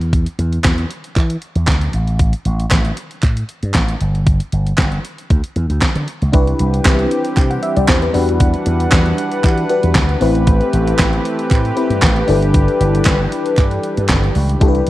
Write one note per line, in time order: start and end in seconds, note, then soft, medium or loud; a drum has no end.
0.00 0.25 E2 medium
0.00 closed hi-hat soft
0.13 kick loud
0.13 closed hi-hat medium
0.26 closed hi-hat medium
0.39 0.58 E2 medium
0.39 closed hi-hat medium
0.53 closed hi-hat soft
0.64 0.84 E2 medium
0.64 kick loud
0.64 snare loud
0.64 clap medium
0.64 clap loud
0.64 closed hi-hat medium
0.78 closed hi-hat soft
0.91 closed hi-hat medium
1.04 closed hi-hat soft
1.16 1.36 E3 medium
1.16 kick loud
1.16 clap medium
1.16 closed hi-hat medium
1.30 closed hi-hat medium
1.42 closed hi-hat medium
1.56 1.68 E2 medium
1.56 closed hi-hat soft
1.67 1.87 D2 medium
1.67 kick loud
1.67 snare loud
1.67 clap medium
1.67 closed hi-hat medium
1.81 closed hi-hat medium
1.93 2.32 A1 medium
1.93 closed hi-hat medium
2.07 closed hi-hat soft
2.19 kick loud
2.19 closed hi-hat medium
2.33 closed hi-hat medium
2.45 2.65 A1 medium
2.45 closed hi-hat medium
2.60 closed hi-hat soft
2.71 2.91 A1 medium
2.71 kick loud
2.71 snare loud
2.71 clap medium
2.71 closed hi-hat medium
2.85 closed hi-hat soft
2.97 closed hi-hat medium
3.11 closed hi-hat soft
3.23 3.43 A2 medium
3.23 kick loud
3.23 clap medium
3.23 closed hi-hat medium
3.37 closed hi-hat medium
3.49 closed hi-hat medium
3.63 3.72 G2 medium
3.63 closed hi-hat soft
3.74 3.94 A1 medium
3.74 kick loud
3.74 snare loud
3.74 clap medium
3.74 closed hi-hat medium
3.88 closed hi-hat medium
4.01 4.39 G1 medium
4.01 closed hi-hat medium
4.15 closed hi-hat soft
4.27 kick loud
4.27 closed hi-hat medium
4.40 closed hi-hat medium
4.52 4.72 G1 medium
4.52 closed hi-hat medium
4.67 closed hi-hat soft
4.78 4.98 G1 loud
4.78 kick loud
4.78 snare loud
4.78 clap medium
4.78 closed hi-hat medium
4.92 closed hi-hat soft
5.05 closed hi-hat medium
5.18 closed hi-hat soft
5.30 5.41 D2 medium
5.30 kick medium
5.30 closed hi-hat medium
5.44 closed hi-hat medium
5.56 5.66 E2 medium
5.56 closed hi-hat medium
5.70 5.79 D2 medium
5.70 closed hi-hat soft
5.82 kick loud
5.82 snare loud
5.82 clap medium
5.82 closed hi-hat medium
5.96 6.05 D3 medium
5.96 closed hi-hat medium
6.08 closed hi-hat medium
6.22 6.31 C#2 medium
6.22 closed hi-hat soft
6.32 6.53 C2 loud
6.32 10.18 E3 medium
6.32 10.18 G3 medium
6.32 8.13 C4 medium
6.32 8.11 D4 medium
6.32 8.11 E4 medium
6.32 8.11 G4 medium
6.32 8.13 G4 loud
6.32 14.90 B4 medium
6.32 7.35 B4 medium
6.32 kick loud
6.32 closed hi-hat loud
6.47 closed hi-hat soft
6.59 6.79 C2 medium
6.59 closed hi-hat medium
6.74 closed hi-hat medium
6.85 7.05 C2 loud
6.85 kick loud
6.85 snare loud
6.85 clap loud
6.85 clap medium
6.85 closed hi-hat loud
6.99 closed hi-hat soft
7.11 closed hi-hat medium
7.25 closed hi-hat medium
7.37 7.56 C3 loud
7.37 7.50 G5 medium
7.37 kick loud
7.37 clap medium
7.37 closed hi-hat medium
7.50 7.62 F#5 medium
7.50 closed hi-hat soft
7.63 7.76 E5 medium
7.63 closed hi-hat medium
7.76 7.86 C2 loud
7.76 7.88 D5 medium
7.76 closed hi-hat medium
7.88 8.08 E2 loud
7.88 8.02 C5 medium
7.88 kick loud
7.88 snare loud
7.88 clap medium
7.88 closed hi-hat medium
8.02 8.14 B4 medium
8.02 closed hi-hat soft
8.13 8.53 E2 loud
8.13 9.66 D4 medium
8.13 10.20 D4 medium
8.13 9.66 F#4 medium
8.13 9.67 G4 medium
8.13 9.67 B4 medium
8.13 10.20 F#5 loud
8.13 open hi-hat medium
8.29 closed hi-hat soft
8.40 kick loud
8.40 closed hi-hat loud
8.54 closed hi-hat soft
8.66 8.86 E2 medium
8.66 closed hi-hat medium
8.80 closed hi-hat medium
8.92 9.12 E2 loud
8.92 kick loud
8.92 snare loud
8.92 clap loud
8.92 closed hi-hat loud
9.06 closed hi-hat soft
9.18 closed hi-hat medium
9.32 closed hi-hat soft
9.44 9.63 E3 loud
9.44 kick loud
9.44 clap medium
9.44 closed hi-hat medium
9.58 closed hi-hat soft
9.69 10.21 D4 medium
9.69 10.22 F#4 medium
9.69 10.20 G4 medium
9.69 10.21 B4 medium
9.69 closed hi-hat medium
9.83 9.95 E2 medium
9.83 closed hi-hat medium
9.95 10.15 D2 medium
9.95 kick loud
9.95 snare loud
9.95 clap loud
9.95 clap medium
9.95 closed hi-hat medium
10.09 closed hi-hat soft
10.21 10.60 A1 loud
10.21 12.26 E3 medium
10.21 12.27 A3 medium
10.21 11.73 C4 medium
10.21 12.26 C4 medium
10.21 11.74 E4 medium
10.21 14.57 G4 loud
10.21 11.74 G4 medium
10.21 11.74 B4 medium
10.21 open hi-hat medium
10.35 closed hi-hat soft
10.47 kick loud
10.47 closed hi-hat loud
10.61 closed hi-hat soft
10.73 10.93 A1 loud
10.73 closed hi-hat medium
10.87 closed hi-hat medium
10.99 11.19 A1 loud
10.99 kick loud
10.99 snare loud
10.99 clap loud
10.99 clap medium
10.99 closed hi-hat loud
11.13 closed hi-hat soft
11.25 closed hi-hat loud
11.39 closed hi-hat soft
11.51 11.70 A2 loud
11.51 kick loud
11.51 clap medium
11.51 closed hi-hat medium
11.65 closed hi-hat soft
11.76 12.28 C4 medium
11.76 12.27 E4 medium
11.76 12.29 G4 medium
11.76 12.28 B4 medium
11.76 closed hi-hat medium
11.90 11.99 G2 loud
11.90 closed hi-hat medium
12.02 12.22 A1 medium
12.02 kick loud
12.02 snare loud
12.02 clap medium
12.02 closed hi-hat medium
12.16 closed hi-hat soft
12.28 12.67 G1 loud
12.28 14.90 E3 medium
12.28 14.90 G3 medium
12.28 14.31 D4 medium
12.28 14.59 D4 medium
12.28 14.31 E4 medium
12.28 14.32 A4 medium
12.28 14.32 B4 medium
12.28 open hi-hat medium
12.42 closed hi-hat soft
12.54 kick loud
12.54 closed hi-hat loud
12.68 closed hi-hat soft
12.80 13.00 G1 loud
12.80 closed hi-hat medium
12.95 closed hi-hat medium
13.05 13.26 G1 loud
13.05 kick loud
13.05 snare loud
13.05 clap loud
13.05 closed hi-hat loud
13.32 closed hi-hat medium
13.46 closed hi-hat medium
13.58 13.77 G2 loud
13.58 kick loud
13.58 clap medium
13.58 closed hi-hat loud
13.71 closed hi-hat soft
13.83 closed hi-hat medium
13.97 14.11 G2 medium
13.97 closed hi-hat medium
14.09 14.29 G1 loud
14.09 kick loud
14.09 snare loud
14.09 clap medium
14.09 clap loud
14.09 closed hi-hat medium
14.23 closed hi-hat soft
14.35 14.55 C#2 loud
14.35 open hi-hat medium
14.49 closed hi-hat medium
14.60 14.81 C2 loud
14.60 14.90 C4 medium
14.60 14.90 D4 medium
14.60 14.90 E4 medium
14.60 14.90 G4 medium
14.60 14.90 G4 loud
14.60 14.68 A4 medium
14.60 kick loud
14.60 closed hi-hat loud
14.68 14.90 B4 medium
14.75 closed hi-hat soft
14.87 closed hi-hat medium